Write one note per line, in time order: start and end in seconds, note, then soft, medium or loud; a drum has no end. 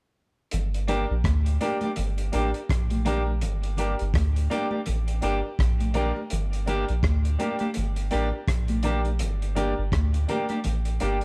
0.51 1.06 G1 loud
0.51 closed hi-hat medium
0.51 low conga medium
0.74 closed hi-hat soft
0.88 1.04 A#3 medium
0.88 1.11 D4 medium
0.88 1.04 D4 medium
0.88 1.12 G4 medium
0.88 1.05 G4 medium
0.88 1.12 A#4 loud
0.88 closed hi-hat medium
0.88 low conga medium
1.11 1.24 A#1 medium
1.24 1.58 D2 medium
1.24 kick loud
1.24 cross-stick loud
1.24 closed hi-hat medium
1.24 high conga medium
1.46 closed hi-hat medium
1.61 1.77 A#3 medium
1.61 1.84 D4 loud
1.61 1.77 D4 medium
1.61 1.84 G4 medium
1.61 1.78 G4 medium
1.61 1.84 A#4 loud
1.61 closed hi-hat medium
1.61 high conga soft
1.81 1.92 A#3 soft
1.81 1.92 D4 soft
1.81 1.91 G4 medium
1.81 closed hi-hat soft
1.81 high conga medium
1.96 2.31 G1 loud
1.96 closed hi-hat medium
1.96 low conga medium
2.18 closed hi-hat soft
2.32 2.53 A1 medium
2.32 2.49 A#3 medium
2.32 2.56 D4 medium
2.32 2.50 D4 medium
2.32 2.53 G4 medium
2.32 2.50 G4 medium
2.32 2.53 A#4 medium
2.32 closed hi-hat medium
2.54 2.60 G4 soft
2.54 2.60 A#4 soft
2.54 closed hi-hat soft
2.69 3.44 A#1 medium
2.69 kick loud
2.69 cross-stick loud
2.69 closed hi-hat medium
2.90 closed hi-hat soft
2.90 high conga medium
3.05 3.21 A#3 medium
3.05 3.29 D4 medium
3.05 3.22 D4 medium
3.05 3.29 G4 medium
3.05 3.22 G4 medium
3.05 3.29 A#4 loud
3.05 closed hi-hat medium
3.05 low conga medium
3.26 high conga soft
3.41 3.95 G1 loud
3.41 closed hi-hat loud
3.41 low conga medium
3.63 closed hi-hat soft
3.77 3.94 A#3 medium
3.77 4.01 D4 medium
3.77 3.94 D4 medium
3.77 4.01 G4 medium
3.77 3.94 G4 medium
3.77 4.02 A#4 loud
3.77 closed hi-hat medium
3.77 low conga medium
3.99 4.14 G1 loud
3.99 closed hi-hat soft
4.14 4.48 D2 medium
4.14 kick loud
4.14 cross-stick loud
4.14 closed hi-hat medium
4.14 high conga soft
4.36 closed hi-hat medium
4.50 4.66 A#3 medium
4.50 4.73 D4 loud
4.50 4.67 D4 medium
4.50 4.73 G4 medium
4.50 4.67 G4 medium
4.50 4.74 A#4 medium
4.50 closed hi-hat medium
4.50 high conga soft
4.71 4.81 A#3 soft
4.71 4.81 D4 medium
4.71 4.80 G4 medium
4.71 high conga medium
4.86 5.21 A1 loud
4.86 closed hi-hat medium
4.86 low conga medium
5.08 closed hi-hat soft
5.21 5.42 G1 medium
5.21 5.38 A#3 medium
5.21 5.45 D4 medium
5.21 5.39 D4 medium
5.21 5.42 G4 medium
5.21 5.39 G4 loud
5.21 5.42 A#4 medium
5.21 closed hi-hat medium
5.43 5.49 G4 soft
5.43 5.49 A#4 soft
5.59 6.12 A#1 medium
5.59 kick loud
5.59 cross-stick loud
5.59 closed hi-hat loud
5.80 closed hi-hat medium
5.80 high conga medium
5.94 6.11 A#3 medium
5.94 6.17 D4 loud
5.94 6.11 D4 medium
5.94 6.18 G4 medium
5.94 6.12 G4 loud
5.94 6.18 A#4 loud
5.94 closed hi-hat medium
5.94 low conga medium
6.16 high conga soft
6.30 6.85 G1 loud
6.30 closed hi-hat loud
6.30 low conga medium
6.53 closed hi-hat soft
6.66 6.83 A#3 medium
6.66 6.90 D4 medium
6.66 6.84 D4 medium
6.66 6.90 G4 medium
6.66 6.84 G4 medium
6.66 6.90 A#4 loud
6.66 closed hi-hat medium
6.66 low conga medium
6.88 7.03 A#1 medium
6.88 closed hi-hat soft
7.03 7.37 D2 loud
7.03 kick loud
7.03 cross-stick loud
7.03 closed hi-hat medium
7.03 high conga medium
7.25 closed hi-hat medium
7.38 7.55 A#3 medium
7.38 7.62 D4 medium
7.38 7.55 D4 medium
7.38 7.63 G4 medium
7.38 7.56 G4 medium
7.38 7.63 A#4 loud
7.38 closed hi-hat medium
7.38 high conga medium
7.59 7.70 A#3 medium
7.59 7.70 D4 medium
7.59 7.69 G4 medium
7.59 closed hi-hat soft
7.59 high conga medium
7.74 8.10 G1 loud
7.74 closed hi-hat medium
7.74 low conga medium
7.96 closed hi-hat medium
8.11 8.32 A1 loud
8.11 8.27 A#3 medium
8.11 8.34 D4 medium
8.11 8.28 D4 loud
8.11 8.31 G4 medium
8.11 8.28 G4 loud
8.11 8.31 A#4 loud
8.11 closed hi-hat medium
8.33 8.39 G4 soft
8.33 8.39 A#4 soft
8.48 9.23 A#1 medium
8.48 kick loud
8.48 cross-stick loud
8.48 closed hi-hat medium
8.68 closed hi-hat medium
8.68 high conga medium
8.83 9.00 A#3 medium
8.83 9.07 D4 loud
8.83 9.01 D4 medium
8.83 9.07 G4 medium
8.83 9.01 G4 medium
8.83 9.07 A#4 loud
8.83 closed hi-hat medium
8.83 low conga medium
9.05 closed hi-hat soft
9.05 high conga soft
9.19 9.74 G1 loud
9.19 closed hi-hat loud
9.19 low conga medium
9.42 closed hi-hat soft
9.55 9.72 A#3 medium
9.55 9.79 D4 medium
9.55 9.73 D4 medium
9.55 9.79 G4 medium
9.55 9.73 G4 loud
9.55 9.80 A#4 loud
9.55 closed hi-hat medium
9.55 low conga medium
9.78 9.92 G1 medium
9.92 10.26 D2 medium
9.92 kick loud
9.92 cross-stick loud
9.92 closed hi-hat medium
9.92 high conga medium
10.14 closed hi-hat medium
10.28 10.45 A#3 medium
10.28 10.52 D4 medium
10.28 10.45 D4 medium
10.28 10.52 G4 medium
10.28 10.46 G4 medium
10.28 10.52 A#4 loud
10.28 closed hi-hat medium
10.28 high conga medium
10.28 low conga medium
10.49 10.60 A#3 soft
10.49 10.59 D4 medium
10.49 10.59 G4 medium
10.49 closed hi-hat soft
10.49 high conga medium
10.64 10.99 A1 medium
10.64 closed hi-hat medium
10.64 low conga medium
10.85 closed hi-hat soft
11.00 11.21 G1 medium
11.00 11.17 A#3 medium
11.00 11.24 D4 medium
11.00 11.17 D4 medium
11.00 11.20 G4 medium
11.00 11.18 G4 medium
11.00 11.21 A#4 medium
11.00 closed hi-hat medium
11.21 closed hi-hat soft